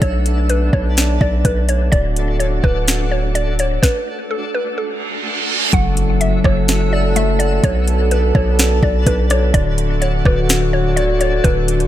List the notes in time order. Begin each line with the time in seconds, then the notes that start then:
0.01 B1 A3 B3 D4 A4 C#5, kick, closed hi-hat
0.26 closed hi-hat
0.49 B4, closed hi-hat
0.73 B1 C#5, kick
0.97 snare, closed hi-hat
1.21 B1 D5, kick
1.45 B1 B4, kick, closed hi-hat
1.69 C#5, closed hi-hat
1.92 D1 D3 A3 D4 F#4 D5, kick, closed hi-hat
2.16 closed hi-hat
2.40 C#5, closed hi-hat
2.64 D1 B4, kick
2.88 snare, closed hi-hat
3.11 C#5
3.35 D5, closed hi-hat
3.59 C#5, closed hi-hat
3.83 B4, kick, snare
4.31 A4
4.54 B4
4.78 A4, reverse cymbal
5.73 F#1 F#3 A3 C#4 E4 F#4 A4 E5 F#5, kick, closed hi-hat, impact
5.97 closed hi-hat
6.21 E5, closed hi-hat
6.44 F#1 C#5, kick, cross-stick
6.68 snare, closed hi-hat
6.93 D5
7.16 A3 E5, closed hi-hat
7.39 D5 F#5, closed hi-hat
7.63 B1 B3 D4 F#4 A4 C#5, kick, closed hi-hat
7.88 closed hi-hat
8.11 B4, closed hi-hat
8.35 B1 C#5, kick
8.59 snare, closed hi-hat
8.83 B1 D5, kick
9.06 B1 D4 B4, kick, closed hi-hat
9.30 C#5 D5, cross-stick, closed hi-hat
9.54 D1 D3 A3 F#4 D5, kick, closed hi-hat
9.78 closed hi-hat
10.02 C#5, closed hi-hat
10.25 D1 B4, kick, cross-stick
10.49 snare, closed hi-hat
10.73 C#5
10.96 C#5 D5, closed hi-hat
11.21 C#5 D5, closed hi-hat
11.44 D1 D3 B4, kick, closed hi-hat
11.68 closed hi-hat
11.80 closed hi-hat